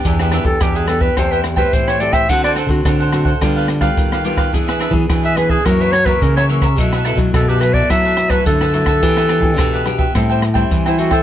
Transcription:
<<
  \new Staff \with { instrumentName = "Cavaquinho" } { \time 4/4 \key e \minor \tempo 4 = 107 <d' g' b' e''>16 <g' b' e''>16 <d' g' b' e''>16 r16 <d' g' b' e''>16 <g' b' e''>8 <g' b' e''>16 <a' c'' e'' g''>16 <c'' e'' g''>16 r16 <c'' e'' g''>8 <c'' e'' g''>16 <a' c'' e'' g''>16 <c'' e'' g''>16 | <d' a' c'' fis''>16 <a' c'' fis''>16 <d' a' c'' fis''>16 r16 <d' a' c'' fis''>16 <a' c'' fis''>8 <a' c'' fis''>16 <d' g' b' f''>16 <g' b' f''>16 r16 <g' b' f''>8 <g' b' f''>16 <d' g' b' f''>16 <g' b' f''>16 | <d' gis' b' e''>16 <gis' b' e''>16 <d' gis' b' e''>16 r16 <d' gis' b' e''>16 <gis' b' e''>8 <gis' b' e''>16 <fis' ais' cis'' e''>16 <ais' cis'' e''>16 r16 <ais' cis'' e''>8 <ais' cis'' e''>16 <fis' ais' cis'' e''>16 <ais' cis'' e''>16 | <e' a' b' e''>16 <a' b' e''>16 <e' a' b' e''>16 r16 <e' a' b' e''>16 <a' b' e''>8 <a' b' e''>16 <e' a' b' e''>16 <a' b' e''>16 r16 <a' b' e''>8 <a' b' e''>16 <e' a' b' e''>16 <a' b' e''>16 |
<d' g' b' e''>16 <g' b' e''>16 <d' g' b' e''>16 r16 <d' g' b' e''>16 <g' b' e''>8 <g' b' e''>16 <a' c'' e'' g''>16 <c'' e'' g''>16 r16 <c'' e'' g''>8 <c'' e'' g''>16 <a' c'' e'' g''>16 <c'' e'' g''>16 | }
  \new Staff \with { instrumentName = "Clarinet" } { \time 4/4 \key e \minor r8. a'16 g'16 gis'16 a'16 b'16 c''16 b'16 g'16 b'16 c''16 cis''16 d''16 e''16 | fis''16 d''16 r2. r8 | r4 r16 e''16 b'16 gis'16 ais'16 b'16 cis''16 b'16 ais'16 cis''16 r8 | r4 a'16 g'16 b'16 d''16 e''8. b'16 a'4~ |
a'2 r4 r16 e'16 fis'16 a'16 | }
  \new Staff \with { instrumentName = "Nylon-string guitar" } { \time 4/4 \key e \minor << { <b d' g'>8. <b d' g'>8. <b d' g'>8 <a c' g'>8. <a c' g'>8. <a c' g'>8 | <a c' fis'>8 r16 <a c' fis'>8. <a c' fis'>16 r16 <g b f'>8. <g b f'>8. <g b f'>8 | <b d' gis'>8. <b d' gis'>8. <b d' gis'>8 <e ais cis'>8 r16 <e ais cis'>8. <e ais cis'>16 r16 | <fis a e'>8 r16 <fis a e'>8. <fis a e'>8 <fis a e'>8. <fis a e'>8. <fis a e'>16 r16 |
<b d' g'>8. <b d' g'>8. <b d' g'>8 <g c' e'>8 r16 <g c' e'>8. <g c' e'>16 r16 | } \\ { e4 b,4 e4 e4 | d4 a,4 d4 r4 | e4 b,4 fis,4 cis4 | b,4 fis,4 b,4 fis,4 |
e4 b,4 a,4 e4 | } >> }
  \new Staff \with { instrumentName = "Nylon-string guitar" } { \clef bass \time 4/4 \key e \minor e,8. e,16 e,4 e,4 a,4 | d8. d16 d4 d4 dis4 | e8. e16 e4 fis4 cis4 | b,8. b,16 b,4 fis4 d4 |
e8. e16 b,4 a,4 e4 | }
  \new DrumStaff \with { instrumentName = "Drums" } \drummode { \time 4/4 <hh bd>16 <hh ss>16 <hh ss>16 bd16 <hh bd ss>16 hh16 <hh ss>16 bd16 <hh bd ss>16 hh16 <hh ss>16 <bd ss>16 <hh bd>16 <hh ss>16 hh16 <hh bd ss>16 | <hh bd>16 <hh ss>16 <hh ss>16 <hh bd>16 <hh bd ss>16 hh16 <hh ss>16 bd16 <hh bd ss>8 <hh ss>16 <hh bd ss>16 <hh bd>16 ss16 hh16 <hh bd ss>16 | <hh bd>16 <hh ss>16 <hh ss>16 bd16 <hh bd ss>16 hh16 <hh ss>16 bd16 <hh bd ss>16 hh16 <hh ss>16 <bd ss>16 <hh bd>16 <hh ss>16 hh16 <hh bd ss>16 | <hh bd>16 <hh ss>16 <hh ss>16 <hh bd>16 <hh bd ss>16 hh16 <hh ss>16 bd16 <hh bd ss>8 <hh ss>16 <hh bd ss>16 <hh bd>16 ss16 hh16 <hh bd ss>16 |
<hh bd>16 <hh ss>16 <hh ss>16 bd16 <hh bd ss>16 hh16 <hh ss>16 bd16 <hh bd ss>16 hh16 <hh ss>16 <bd ss>16 <hh bd>16 <hh ss>16 hh16 <hh bd ss>16 | }
>>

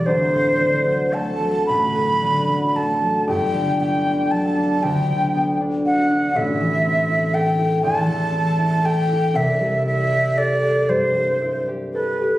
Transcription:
<<
  \new Staff \with { instrumentName = "Flute" } { \time 6/8 \key g \major \tempo 4. = 39 c''4 a''8 b''4 a''8 | g''8 g''8 a''8 g''8. r16 fis''8 | e''4 g''8 a''4 g''8 | e''8 e''8 d''8 c''8. r16 b'8 | }
  \new Staff \with { instrumentName = "Harp" } { \clef bass \time 6/8 \key g \major <d,, d,>16 a,16 d16 fis16 a16 fis16 <a,, a,>16 a,16 d16 fis16 a16 fis16 | <g,, g,>16 d16 b16 d'16 fis16 d'16 <d, d>16 d16 b16 d'16 fis'16 d'16 | <a,, a,>16 e16 c'16 e'16 a'16 e'16 <e, e>16 e16 c'16 e'16 a'16 e'16 | <c, c>16 g16 e'16 g'16 a'16 g'16 <g, g>16 g16 e'16 g'16 a'16 g'16 | }
>>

